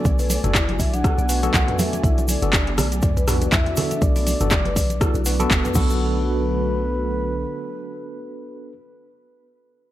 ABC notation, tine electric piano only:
X:1
M:4/4
L:1/16
Q:"Swing 16ths" 1/4=121
K:Bdor
V:1 name="Tine electric piano"
[B,DFA]3 [B,DFA] z4 [B,DFA] z [B,DFB] [B,DFA]4- [B,DFA]- | [B,DFA]3 [B,DFA] z6 [B,DFB]2 z2 [B,DFA]2- | [B,DFA]3 [B,DFA] z4 [B,DFA] z [B,DFB] [B,DFA]3 [B,DFA]2- | [B,DFA]16- |
[B,DFA]16 |]